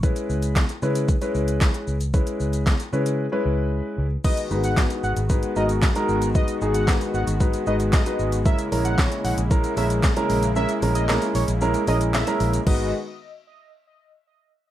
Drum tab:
CC |----------------|----------------|x---------------|----------------|
HH |-x-x-x-x-x-x-x-x|-x-x-x-x--------|-x-x-x-x-x-x-x-x|-x-x-x-x-x-x-x-x|
SH |xxxxxxxxxxxxxxxx|xxxxxxxx--------|xxxxxxxxxxxxxxxx|xxxxxxxxxxxxxxxx|
CP |----x-------x---|----x-----------|----x-------x---|----x-------x---|
SD |----o-------o---|----o-----------|----o-------o---|----o-------o---|
BD |o---o---o---o---|o---o-----------|o---o---o---o---|o---o---o---o---|

CC |----------------|----------------|x---------------|
HH |-xox-xox-xox-xox|-xox-xox-xox-xox|----------------|
SH |xxxxxxxxxxxxxxxx|xxxxxxxxxxxxxxxx|----------------|
CP |----x-------x---|----x-------x---|----------------|
SD |----o-------o---|----o-------o---|----------------|
BD |o---o---o---o---|----------------|o---------------|